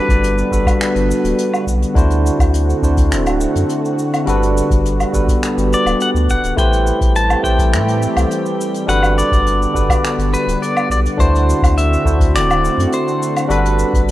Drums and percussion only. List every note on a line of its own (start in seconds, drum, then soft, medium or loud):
0.09 kick loud
0.09 closed hi-hat medium
0.09 cabasa soft
0.24 closed hi-hat medium
0.24 cabasa medium
0.38 cabasa soft
0.52 kick medium
0.52 cabasa medium
0.66 kick loud
0.66 closed hi-hat medium
0.66 cabasa medium
0.66 low woodblock medium
0.81 finger snap medium
0.81 closed hi-hat medium
0.81 cabasa medium
0.96 closed hi-hat medium
0.96 cabasa soft
1.11 cabasa medium
1.25 closed hi-hat medium
1.25 cabasa soft
1.38 closed hi-hat medium
1.38 cabasa medium
1.54 cabasa soft
1.54 low woodblock medium
1.67 kick medium
1.67 cabasa medium
1.82 closed hi-hat medium
1.82 cabasa soft
1.96 kick loud
1.96 closed hi-hat medium
1.96 cabasa medium
2.10 closed hi-hat soft
2.10 cabasa soft
2.26 cabasa medium
2.39 kick loud
2.39 closed hi-hat medium
2.39 cabasa medium
2.39 low woodblock medium
2.54 closed hi-hat medium
2.54 cabasa medium
2.70 cabasa soft
2.83 kick medium
2.83 cabasa medium
2.97 kick loud
2.97 closed hi-hat medium
2.97 cabasa medium
3.12 finger snap medium
3.12 closed hi-hat medium
3.12 cabasa medium
3.26 closed hi-hat soft
3.26 cabasa soft
3.26 low woodblock medium
3.41 cabasa loud
3.55 closed hi-hat medium
3.55 cabasa medium
3.69 closed hi-hat medium
3.69 cabasa medium
3.85 cabasa soft
3.99 cabasa medium
4.13 closed hi-hat medium
4.13 cabasa soft
4.13 low woodblock medium
4.27 closed hi-hat medium
4.27 cabasa medium
4.43 closed hi-hat medium
4.43 cabasa soft
4.57 cabasa medium
4.71 kick loud
4.71 closed hi-hat medium
4.71 cabasa medium
4.85 closed hi-hat medium
4.85 cabasa medium
5.00 closed hi-hat soft
5.00 cabasa soft
5.00 low woodblock medium
5.14 kick medium
5.14 cabasa medium
5.28 kick loud
5.28 closed hi-hat medium
5.28 cabasa medium
5.43 finger snap medium
5.43 closed hi-hat medium
5.43 cabasa medium
5.58 closed hi-hat soft
5.58 cabasa soft
5.73 cabasa medium
5.86 closed hi-hat medium
5.86 cabasa medium
5.86 low woodblock medium
6.00 closed hi-hat medium
6.00 cabasa medium
6.16 cabasa soft
6.29 kick medium
6.29 cabasa medium
6.43 closed hi-hat medium
6.43 cabasa medium
6.58 kick loud
6.58 closed hi-hat medium
6.58 cabasa medium
6.73 closed hi-hat soft
6.73 cabasa soft
6.87 cabasa medium
7.01 kick loud
7.01 closed hi-hat medium
7.01 cabasa soft
7.15 closed hi-hat medium
7.15 cabasa medium
7.30 cabasa soft
7.30 low woodblock medium
7.44 kick medium
7.44 cabasa medium
7.59 kick loud
7.59 closed hi-hat medium
7.59 cabasa medium
7.74 finger snap medium
7.74 closed hi-hat medium
7.74 cabasa medium
7.88 closed hi-hat medium
7.88 cabasa soft
8.02 cabasa medium
8.16 closed hi-hat medium
8.16 cabasa medium
8.16 low woodblock medium
8.31 closed hi-hat medium
8.31 cabasa medium
8.46 cabasa soft
8.61 cabasa medium
8.74 closed hi-hat medium
8.74 cabasa soft
8.89 closed hi-hat medium
8.89 cabasa medium
9.03 closed hi-hat soft
9.03 cabasa soft
9.03 low woodblock medium
9.19 cabasa medium
9.32 kick loud
9.32 closed hi-hat medium
9.32 cabasa soft
9.46 closed hi-hat medium
9.46 cabasa medium
9.62 cabasa soft
9.75 kick medium
9.75 cabasa medium
9.89 kick loud
9.89 closed hi-hat medium
9.89 cabasa medium
9.89 low woodblock medium
10.04 finger snap medium
10.04 closed hi-hat medium
10.04 cabasa medium
10.19 closed hi-hat soft
10.19 cabasa soft
10.34 cabasa medium
10.48 closed hi-hat medium
10.48 cabasa medium
10.62 closed hi-hat medium
10.62 cabasa medium
10.77 cabasa soft
10.77 low woodblock medium
10.90 kick medium
10.90 cabasa medium
11.06 closed hi-hat medium
11.06 cabasa medium
11.19 kick loud
11.19 closed hi-hat medium
11.19 cabasa medium
11.36 closed hi-hat soft
11.36 cabasa soft
11.50 cabasa medium
11.62 kick loud
11.62 closed hi-hat medium
11.62 cabasa soft
11.62 low woodblock medium
11.77 closed hi-hat medium
11.77 cabasa medium
11.93 cabasa soft
12.05 kick medium
12.05 cabasa medium
12.20 kick loud
12.20 closed hi-hat medium
12.20 cabasa soft
12.35 finger snap medium
12.35 closed hi-hat medium
12.35 cabasa medium
12.50 closed hi-hat soft
12.50 cabasa soft
12.50 low woodblock medium
12.65 cabasa medium
12.80 closed hi-hat medium
12.80 cabasa soft
12.92 closed hi-hat medium
12.92 cabasa medium
13.08 cabasa soft
13.23 cabasa medium
13.36 closed hi-hat medium
13.36 cabasa medium
13.36 low woodblock medium
13.50 closed hi-hat medium
13.50 cabasa medium
13.65 closed hi-hat medium
13.65 cabasa soft
13.79 cabasa medium
13.94 kick loud
13.94 closed hi-hat medium
13.94 cabasa soft